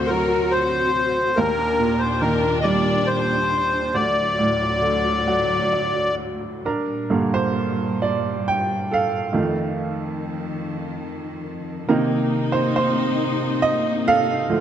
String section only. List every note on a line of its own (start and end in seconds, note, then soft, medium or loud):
0.00 1.35 D2 medium
0.00 1.36 C3 medium
0.00 1.36 F#4 medium
1.37 3.91 D#2 medium
1.37 3.91 A#2 medium
1.37 3.91 D4 medium
3.93 6.63 D2 medium
3.93 6.62 A2 medium
3.93 6.63 F#3 medium
6.64 9.30 A#2 medium
6.64 9.30 G3 medium
9.32 11.86 F2 medium
9.32 11.86 D#3 medium
11.88 14.46 C3 medium
11.88 14.47 A#3 medium
11.88 14.47 D#4 medium
14.52 14.60 D2 medium
14.52 14.60 A2 medium
14.52 14.60 F3 medium